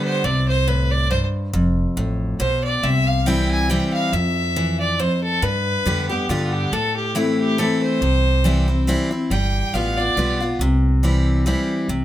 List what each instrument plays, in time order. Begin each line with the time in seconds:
Already playing: steel-string acoustic guitar D3 G3 B3 G4
0.05 fiddle C5
0.24 upright bass C2, steel-string acoustic guitar C3, fiddle D5
0.48 fiddle C5
0.68 steel-string acoustic guitar A2, fiddle B4
0.91 fiddle D5
1.10 steel-string acoustic guitar G2, fiddle C5
1.53 upright bass F1, steel-string acoustic guitar F2
1.97 upright bass A1, steel-string acoustic guitar A2
2.40 upright bass B1, steel-string acoustic guitar B2, fiddle C5
2.64 fiddle D5
2.83 upright bass C2, steel-string acoustic guitar C3, fiddle E5
3.07 fiddle F5
3.26 steel-string acoustic guitar E3 G3 C4 E4, fiddle G5
3.50 fiddle G#5
3.69 steel-string acoustic guitar E3 G3 C4 E4, fiddle G5
3.93 fiddle F5
4.13 upright bass F2, steel-string acoustic guitar F2, fiddle E5
4.56 steel-string acoustic guitar E3
4.80 fiddle D5
5.00 steel-string acoustic guitar F2, fiddle C5
5.23 fiddle A4
5.42 upright bass G2, steel-string acoustic guitar G2, fiddle B4
5.86 upright bass F2, steel-string acoustic guitar D3 G3 B3 G4
6.09 steel-string acoustic guitar B3 G4, fiddle G4
6.29 upright bass G2, steel-string acoustic guitar D3 G3 B3 G4, fiddle F4
6.53 fiddle G4
6.72 upright bass A2, steel-string acoustic guitar A2, fiddle A4
6.96 fiddle G4
7.15 steel-string acoustic guitar E3 A3 C4 E4, fiddle E4
7.39 fiddle G4
7.58 steel-string acoustic guitar E3 A3 C4 E4, fiddle A4
7.83 fiddle C5
8.01 upright bass C2, steel-string acoustic guitar C3
8.44 steel-string acoustic guitar E3 G3 C4 E4
8.68 steel-string acoustic guitar C4 E4
8.87 steel-string acoustic guitar E3 G3 C4 E4
9.11 steel-string acoustic guitar C4 E4
9.30 upright bass G1, steel-string acoustic guitar G3, fiddle G5
9.73 upright bass A1, steel-string acoustic guitar G3 B3 F4, fiddle F5
9.97 steel-string acoustic guitar B3 F4, fiddle D5
10.16 upright bass B1, steel-string acoustic guitar G3 B3 F4
10.40 steel-string acoustic guitar B3 F4
10.59 upright bass C2, steel-string acoustic guitar C3
11.03 steel-string acoustic guitar E3 G3 C4 E4
11.46 steel-string acoustic guitar E3 G3 C4 E4
11.88 upright bass C2, steel-string acoustic guitar C3